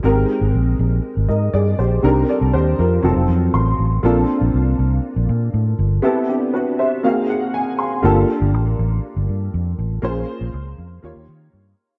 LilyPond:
<<
  \new Staff \with { instrumentName = "Grand piano" } { \time 4/4 \key g \minor \tempo 4 = 120 << { r2 r8 <bes' ees''>8 <aes' d''>8 <g' c''>8~ | <g' c''>8 <a' d''>8 <g' c''>8 <f' bes'>4 r8 c'''4 | r1 | r8 <d' g'>8 <fis' b'>8 <g' c'' e''>8 f''8 ges''8 aes''8 c'''8 |
r1 | r1 | } \\ { <aes c' ees' g' bes'>2.~ <aes c' ees' g' bes'>8 r8 | <g c' d' ees' bes'>2 <ges c' ees' f' a'>2 | <bes c' d' f' a'>1 | <b c' e' g' a'>2 <bes c' ees' ges' aes'>2 |
<bes d' f' g' a'>1 | <bes des' f' aes' c''>2 <bes ees' f' g' des''>2 | } >> }
  \new Staff \with { instrumentName = "Fingered electric bass" } { \clef bass \time 4/4 \key g \minor aes,,8 r16 aes,,16 bes,,8 bes,,8 r16 aes,,16 aes,8 g,8 bes,,8 | c,8 r16 c,16 ees,8 f,8 f,,16 f,,16 f,8 a,,8 a,,8 | bes,,8 r16 bes,,16 c,8 c,8 r16 bes,,16 bes,8 a,8 g,,8 | r1 |
g,,8 r16 g,,16 a,,8 a,,8 r16 g,,16 g,8 f,8 a,,8 | bes,,8 r16 bes,,16 des,8 f,8 ees,16 ees,16 ees8 g,8 r8 | }
>>